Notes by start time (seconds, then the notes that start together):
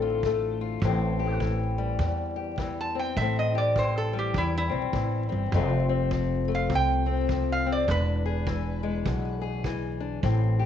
Already playing: A1 A2 D3 A3 C4 A4
0.02 F4
0.23 A3, kick
0.61 F4
0.82 A1 A2 C4, kick
1.19 G4
1.40 E3, kick
1.78 G3
1.99 E2, kick
2.36 G4
2.58 E3, kick
2.81 A5
2.95 C4
2.99 G5
3.17 A1 A2 E5, kick
3.21 C4
3.39 D#5
3.55 G4 D5
3.76 E3 C5, kick
3.98 A4
4.13 G3
4.19 G4
4.34 E2, kick
4.38 E4
4.58 E4
4.69 B1 C4
4.93 A1 E3, kick
5.29 G1 C4
5.52 F1 F2 F3 A3, kick
5.56 C4
5.89 C4
6.11 F3, kick
6.48 A3
6.55 F5
6.70 C2 C3, kick
6.75 G5
7.06 C4
7.29 F3, kick
7.52 F5
7.66 C4
7.72 D5
7.88 E1 E2 D4 B4, kick
8.26 G#4
8.47 E3, kick
8.83 G#3
9.06 B1 B2, kick
9.42 G#4
9.64 E3, kick
10.00 D4
10.23 A1 A2 C4, kick
10.59 G4